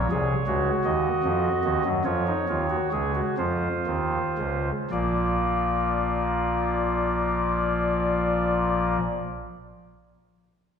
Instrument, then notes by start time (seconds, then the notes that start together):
pipe organ
Already playing: C#5
0.11 C2 C3 G#4
0.47 C#2 C#3 F#4
0.85 D#2 D#3 D#5
1.24 F2 F3
1.64 D#2 D#3
1.85 F#2 F#3
2.05 F2 F3 F4 C#5
2.27 D#4
2.49 D#2 D#3 F4
2.70 F#4
2.92 C#2 C#3 G#4
3.15 F#4
3.38 F2 F3 F4 C5
3.87 D#2 D#3
4.38 C#2 C#3
4.91 A#1 A#2 F3 A#3 F4 D5